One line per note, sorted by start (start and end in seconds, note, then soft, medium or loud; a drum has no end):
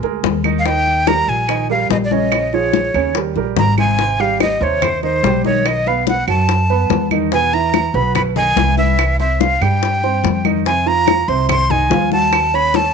0.03 0.22 D2 medium
0.03 0.37 G#3 medium
0.03 0.37 G#4 medium
0.03 0.37 A#4 medium
0.03 high bongo soft
0.03 high conga soft
0.23 1.22 D#2 medium
0.23 high bongo medium
0.23 low bongo medium
0.23 high conga medium
0.44 0.62 D#3 medium
0.44 0.62 D#4 medium
0.44 0.62 D#5 medium
0.44 high bongo soft
0.44 high conga medium
0.44 claves medium
0.59 0.67 F5 medium
0.65 1.00 D#3 medium
0.65 1.00 D#4 medium
0.65 1.00 D#5 medium
0.65 1.09 G5 loud
0.65 high bongo medium
0.65 high conga soft
0.86 high conga soft
1.07 1.41 G3 medium
1.07 1.42 G4 medium
1.07 1.42 A#4 medium
1.07 1.30 A#5 loud
1.07 high bongo medium
1.07 high conga medium
1.07 claves medium
1.28 1.86 A#1 medium
1.28 1.70 G#5 medium
1.28 high conga soft
1.49 1.66 D#3 medium
1.49 1.66 D#4 medium
1.49 1.66 D#5 medium
1.49 high bongo medium
1.49 high conga soft
1.49 claves medium
1.70 2.04 G3 medium
1.70 2.04 G4 medium
1.70 2.04 A#4 medium
1.70 1.90 F5 medium
1.70 high conga soft
1.90 2.88 A#1 medium
1.90 1.97 D#5 medium
1.90 high bongo medium
1.90 low bongo medium
1.90 high conga medium
2.05 2.14 D5 medium
2.11 2.46 C#3 medium
2.11 2.46 C#4 medium
2.11 2.46 C#5 medium
2.11 2.56 D#5 medium
2.11 high conga medium
2.32 high bongo medium
2.32 high conga soft
2.32 claves medium
2.53 2.88 F3 medium
2.53 2.88 F4 medium
2.53 2.88 G#4 medium
2.53 3.16 C#5 medium
2.53 high bongo soft
2.53 high conga soft
2.73 high bongo medium
2.73 high conga medium
2.94 3.33 D#2 loud
2.94 3.12 C#3 medium
2.94 3.12 C#4 medium
2.94 3.12 C#5 medium
2.94 high conga soft
2.94 claves medium
3.15 3.33 G3 medium
3.15 3.33 G4 medium
3.15 3.33 A#4 medium
3.15 high bongo medium
3.15 high conga soft
3.36 3.55 A#1 medium
3.36 3.71 G3 medium
3.36 3.71 G4 medium
3.36 3.71 A#4 medium
3.36 high bongo soft
3.36 high conga soft
3.56 4.55 G#1 loud
3.56 3.77 A#5 medium
3.56 high bongo medium
3.56 low bongo medium
3.56 high conga medium
3.78 3.95 C3 medium
3.78 3.95 C4 medium
3.78 3.95 C5 medium
3.78 4.22 G#5 medium
3.78 high bongo soft
3.78 high conga medium
3.78 claves medium
3.99 4.16 C3 medium
3.99 4.16 C4 medium
3.99 4.16 C5 medium
3.99 high bongo medium
3.99 high conga soft
4.19 4.54 G3 medium
4.19 4.54 G4 medium
4.19 4.41 F5 medium
4.19 4.54 G5 medium
4.19 high bongo soft
4.19 high conga soft
4.40 4.64 D#5 medium
4.40 high bongo medium
4.40 high conga medium
4.40 claves medium
4.61 5.19 D#2 loud
4.61 4.95 C3 medium
4.61 4.96 C4 medium
4.61 4.96 C5 medium
4.61 4.84 C#5 medium
4.61 high bongo soft
4.61 high conga soft
4.82 5.03 C5 medium
4.82 high bongo medium
4.82 high conga soft
4.82 low conga medium
4.82 claves medium
5.03 5.20 D#3 medium
5.03 5.20 D#4 medium
5.03 5.42 C5 medium
5.03 5.20 D#5 medium
5.03 high bongo soft
5.03 high conga soft
5.23 6.22 B1 medium
5.23 5.41 G3 medium
5.23 5.41 G4 medium
5.23 5.41 G5 medium
5.23 high bongo medium
5.23 low bongo medium
5.23 high conga medium
5.44 5.79 D#3 medium
5.44 5.79 D#4 medium
5.44 5.68 C#5 medium
5.44 5.79 D#5 medium
5.44 high conga medium
5.65 5.89 D#5 loud
5.65 high bongo medium
5.65 high conga soft
5.65 claves medium
5.86 6.21 B3 medium
5.86 6.21 B4 medium
5.86 6.08 F5 medium
5.86 6.21 B5 medium
5.86 high bongo soft
5.86 high conga soft
6.07 6.27 F#5 medium
6.07 high bongo medium
6.07 high conga medium
6.28 6.86 F#2 loud
6.28 6.62 F#3 medium
6.28 6.62 F#4 medium
6.28 6.62 F#5 medium
6.28 7.08 A5 medium
6.28 high conga soft
6.28 claves medium
6.49 high bongo medium
6.49 high conga soft
6.70 7.04 B3 medium
6.70 7.04 B4 medium
6.70 7.04 B5 medium
6.70 high bongo soft
6.70 high conga soft
6.90 7.88 E2 loud
6.90 high bongo medium
6.90 low bongo medium
6.90 high conga medium
7.11 7.29 D#3 medium
7.11 7.29 D#4 medium
7.11 7.29 D#5 medium
7.11 high bongo soft
7.11 high conga medium
7.11 claves medium
7.32 7.49 B2 medium
7.32 7.50 B3 medium
7.32 7.50 B4 medium
7.32 7.55 G#5 loud
7.32 high bongo medium
7.32 high conga soft
7.53 7.87 E3 medium
7.53 7.88 E4 medium
7.53 7.88 E5 medium
7.53 7.97 A#5 loud
7.53 high bongo soft
7.53 high conga soft
7.73 high bongo medium
7.73 high conga medium
7.73 claves medium
7.94 8.53 B1 loud
7.94 8.29 B2 medium
7.94 8.29 B3 medium
7.94 8.29 B4 medium
7.94 8.15 B5 medium
7.94 high bongo soft
7.94 high conga soft
8.15 8.22 B5 medium
8.15 high bongo medium
8.15 high conga soft
8.15 low conga medium
8.15 claves medium
8.36 8.53 D#3 medium
8.36 8.54 D#4 medium
8.36 8.54 D#5 medium
8.36 8.75 G#5 loud
8.36 high bongo soft
8.36 high conga soft
8.36 low conga medium
8.56 9.55 C2 loud
8.56 8.74 E3 medium
8.56 8.74 E4 medium
8.56 8.75 E5 medium
8.56 high bongo medium
8.56 low bongo medium
8.56 high conga medium
8.78 9.13 E3 medium
8.78 9.13 E4 medium
8.78 9.17 E5 medium
8.78 9.13 E5 medium
8.78 high conga medium
8.99 high bongo medium
8.99 high conga soft
8.99 claves medium
9.20 9.54 C4 medium
9.20 9.54 C5 medium
9.20 9.42 E5 medium
9.20 9.54 C6 medium
9.20 high bongo soft
9.20 high conga soft
9.40 9.63 F5 loud
9.40 high bongo medium
9.40 high conga medium
9.61 10.20 G2 medium
9.61 9.96 G3 medium
9.61 9.96 G4 medium
9.61 10.45 G5 medium
9.61 9.96 G5 medium
9.61 high conga soft
9.61 claves medium
9.82 high bongo medium
9.82 high conga soft
10.03 10.38 C4 medium
10.03 10.38 C5 medium
10.03 10.38 C6 medium
10.03 high bongo soft
10.03 high conga soft
10.24 11.22 F2 medium
10.24 high bongo medium
10.24 low bongo medium
10.24 high conga medium
10.45 10.62 D#3 medium
10.45 10.62 D#4 medium
10.45 10.62 D#5 medium
10.45 high bongo soft
10.45 high conga medium
10.45 claves medium
10.66 10.83 C3 medium
10.66 10.83 C4 medium
10.66 10.83 C5 medium
10.66 10.89 G#5 loud
10.66 high bongo medium
10.66 high conga soft
10.86 11.21 F3 medium
10.86 11.21 F4 medium
10.86 11.21 F5 medium
10.86 11.30 A#5 loud
10.86 high bongo soft
10.86 high conga soft
11.07 high bongo medium
11.07 high conga medium
11.07 claves medium
11.28 11.87 C2 medium
11.28 11.63 C3 medium
11.28 11.63 C4 medium
11.28 11.63 C5 medium
11.28 11.49 C6 medium
11.28 high bongo soft
11.28 high conga soft
11.49 11.72 C6 loud
11.49 high bongo medium
11.49 high conga soft
11.49 low conga medium
11.49 claves medium
11.70 11.87 D#3 medium
11.70 11.87 D#4 medium
11.70 11.88 D#5 medium
11.70 12.12 G#5 loud
11.70 high bongo soft
11.70 high conga soft
11.70 low conga medium
11.90 12.89 D#2 medium
11.90 12.08 F3 medium
11.90 12.08 F4 medium
11.90 12.09 F5 medium
11.90 high bongo medium
11.90 low bongo medium
11.90 high conga medium
12.12 12.46 F#3 medium
12.12 12.47 F#4 medium
12.12 12.47 F#5 medium
12.12 12.56 A5 loud
12.12 high conga medium
12.33 high bongo medium
12.33 high conga soft
12.33 claves medium
12.53 12.88 C#4 medium
12.53 12.88 C#5 medium
12.53 12.77 B5 loud
12.53 12.88 C#6 medium
12.53 high bongo soft
12.53 high conga soft
12.74 12.94 A5 loud
12.74 high bongo medium
12.74 high conga medium